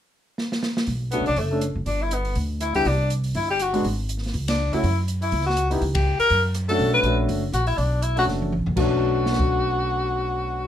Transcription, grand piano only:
1.12 1.25 A3 medium
1.12 1.25 C#4 soft
1.12 1.26 D4 soft
1.12 1.26 F#4 medium
1.51 1.61 A3 medium
1.51 1.61 C#4 medium
1.51 1.61 D4 medium
1.51 1.62 A4 medium
2.75 2.84 G3 medium
2.75 2.85 B3 medium
2.75 2.85 D4 medium
2.75 2.85 E4 medium
3.73 3.83 G#3 medium
3.73 3.83 B3 medium
3.73 3.83 D4 medium
3.73 3.84 F#4 medium
4.72 4.82 A3 medium
4.72 4.82 C#4 medium
4.72 4.82 E4 medium
4.72 4.83 F#4 medium
5.70 5.80 B3 medium
5.70 5.80 D#4 medium
5.70 5.81 E4 medium
5.70 5.81 G4 medium
6.68 7.02 A3 medium
6.68 7.02 C#4 medium
6.68 7.02 D4 medium
6.68 7.03 F#4 medium
7.04 7.40 A3 medium
7.04 7.40 C#4 medium
7.04 7.40 D4 medium
7.04 7.40 F#4 medium
8.17 8.50 A3 medium
8.17 8.50 C#4 soft
8.17 8.50 D4 soft
8.17 8.50 F#4 medium
8.76 10.67 B2 medium
8.76 10.67 F#3 medium
8.76 10.67 A3 medium
8.76 10.67 C#4 medium
8.76 10.67 D4 medium

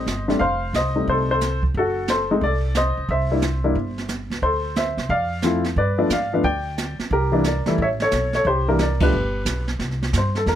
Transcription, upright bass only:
0.06 0.38 G1 medium
0.40 0.71 F1 medium
0.73 1.05 C2 medium
1.07 1.71 C2 medium
1.74 2.38 F#1 medium
2.41 2.93 C2 medium
2.97 3.08 C#2 medium
3.09 3.72 C2 medium
3.75 4.27 G1 medium
4.30 4.41 C#2 medium
4.42 4.94 D2 medium
4.97 5.09 C2 medium
5.09 5.73 F2 medium
5.76 6.08 G2 medium
6.10 6.41 G#2 medium
6.44 6.95 D2 medium
6.99 muted upright bass stroke soft
7.11 7.62 C2 medium
7.67 muted upright bass stroke soft
7.78 8.09 A1 medium
8.12 8.43 B1 medium
8.45 9.09 C2 medium
9.13 9.44 G1 medium
9.45 9.77 B1 medium
9.79 10.12 C2 medium
10.13 10.46 G2 medium
10.46 10.55 E2 medium

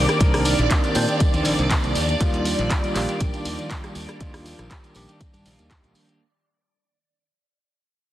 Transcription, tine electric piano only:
0.00 0.17 D#3 loud
0.00 0.18 C4 medium
0.00 0.18 D4 medium
0.00 0.18 A#4 loud
0.20 0.92 D#3 medium
0.20 0.93 C4 medium
0.20 0.93 D4 medium
0.20 0.93 A#4 medium
0.95 1.94 D#3 medium
0.95 1.94 C4 medium
0.95 1.94 D4 medium
0.95 1.95 C5 loud
2.20 2.92 D#3 loud
2.20 2.93 G3 loud
2.20 2.93 D4 loud
2.20 2.93 F4 loud
2.95 4.17 D#3 loud
2.95 4.18 G3 medium
2.95 4.18 D4 medium
2.95 4.18 F4 loud
4.20 4.92 D#3 medium
4.20 4.93 G3 medium
4.20 4.93 D4 medium
4.20 4.93 F4 loud
4.95 6.17 D#3 medium
4.95 6.18 G3 medium
4.95 6.18 D4 medium
4.95 6.18 G4 loud

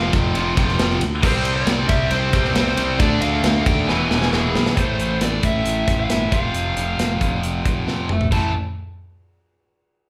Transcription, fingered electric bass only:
0.00 0.11 F1 loud
0.13 0.33 F1 medium
0.36 0.55 F1 medium
0.57 0.77 F1 loud
0.79 0.99 F1 loud
1.00 1.21 D2 medium
1.24 1.63 C2 loud
1.67 1.87 C2 loud
1.89 2.09 C2 loud
2.11 2.31 C2 medium
2.34 2.53 C2 loud
2.56 2.75 C2 loud
2.78 2.97 C2 medium
3.00 3.19 D2 loud
3.22 3.42 D2 loud
3.44 3.64 D2 loud
3.66 3.86 D#2 medium
3.89 4.08 E1 medium
4.11 4.30 E1 medium
4.33 4.52 E1 loud
4.55 4.74 B1 medium
4.77 4.96 A1 medium
4.99 5.18 A1 medium
5.21 5.40 A1 loud
5.43 5.63 A1 medium
5.66 5.85 A1 medium
5.88 6.07 A1 medium
6.09 6.29 G1 medium
6.32 6.52 F1 medium
6.54 6.73 F1 medium
6.76 6.96 F1 medium
6.98 7.18 F1 loud
7.21 7.40 F1 medium
7.44 7.63 F1 medium
7.65 7.85 F1 medium
7.88 8.07 F2 medium
8.10 8.30 F1 medium
8.32 8.53 A1 medium

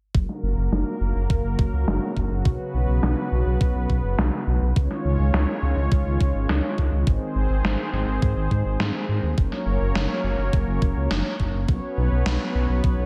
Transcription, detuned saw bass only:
0.15 0.26 F#1 loud
0.43 0.55 F#1 medium
0.58 0.70 F#1 medium
0.72 0.84 F#1 medium
1.01 1.13 F#1 medium
1.16 1.27 F#1 medium
1.30 1.42 F#1 medium
1.44 1.56 F#1 medium
1.59 1.71 F#1 medium
1.73 1.85 C#2 medium
1.88 2.00 F#1 medium
2.17 2.28 F#1 medium
2.31 2.43 F#1 medium
2.45 2.57 B1 medium
2.74 2.86 B1 medium
2.88 3.00 B1 medium
3.03 3.15 B1 loud
3.32 3.44 B1 medium
3.46 3.58 B1 medium
3.61 3.73 B1 medium
3.75 3.87 B1 medium
3.90 4.01 B1 medium
4.04 4.16 F#1 medium
4.18 4.30 B1 medium
4.47 4.59 B1 medium
4.62 4.74 B1 medium
4.76 4.88 C#2 medium
5.05 5.17 C#2 medium
5.19 5.31 C#2 medium
5.34 5.46 C#2 loud
5.62 5.74 C#2 medium
5.77 5.89 C#2 medium
5.92 6.03 C#2 medium
6.06 6.18 C#2 medium
6.21 6.32 C#2 medium
6.35 6.47 G#1 medium
6.49 6.61 C#2 medium
6.78 6.90 C#2 medium
6.92 7.04 C#2 medium
7.07 7.19 G#1 loud
7.35 7.47 G#1 medium
7.50 7.62 G#1 medium
7.64 7.76 G#1 medium
7.93 8.05 G#1 medium
8.07 8.19 G#1 medium
8.22 8.34 G#2 medium
8.36 8.48 G#1 medium
8.51 8.63 G#2 medium
8.65 8.77 G#1 medium
8.80 8.92 G#2 loud
9.09 9.21 G#2 medium
9.23 9.35 D#2 medium
9.38 9.50 F#1 medium
9.66 9.78 F#1 medium
9.81 9.93 F#1 medium
9.95 10.07 F#1 medium
10.24 10.36 F#1 medium
10.39 10.50 F#1 medium
10.53 10.65 F#1 medium
10.67 10.79 F#1 medium
10.82 10.94 F#1 medium
10.96 11.08 C#2 medium
11.11 11.23 F#1 loud
11.40 11.51 F#1 medium
11.54 11.66 F#1 medium
11.69 11.80 B1 loud
11.98 12.09 B1 medium
12.12 12.23 B1 medium
12.26 12.38 B1 medium
12.55 12.67 B1 medium
12.69 12.81 B1 medium
12.84 12.96 B1 medium
12.98 13.06 B1 medium

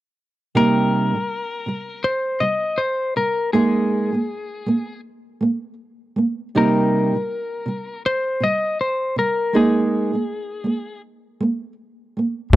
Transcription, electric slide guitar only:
0.57 2.10 A#4 medium
2.04 2.43 C5 medium
2.40 2.80 D#5 medium
2.78 3.14 C5 medium
3.17 3.53 A#4 medium
3.53 5.00 G#4 medium
6.58 8.02 A#4 medium
8.06 8.44 C5 medium
8.44 8.78 D#5 medium
8.81 9.18 C5 medium
9.19 9.56 A#4 medium
9.56 11.01 G#4 medium

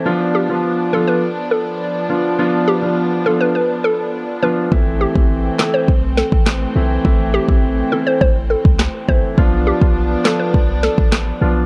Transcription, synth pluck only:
0.35 0.46 G4 medium
0.93 1.04 A4 medium
1.07 1.18 B4 medium
1.51 1.62 A4 medium
2.68 2.79 G4 medium
3.26 3.37 A4 medium
3.41 3.51 B4 medium
3.55 3.66 B4 medium
3.84 3.95 A4 medium
4.42 4.53 B4 medium
5.01 5.12 G4 medium
5.59 5.70 A4 medium
5.74 5.84 C5 medium
6.17 6.28 A4 medium
7.34 7.45 G4 medium
7.92 8.03 A4 medium
8.07 8.17 C5 medium
8.21 8.32 C5 medium
8.50 8.61 A4 medium
9.08 9.19 C5 medium
9.67 9.78 G4 medium
10.25 10.36 A4 medium
10.39 10.50 B4 medium
10.83 10.94 A4 medium

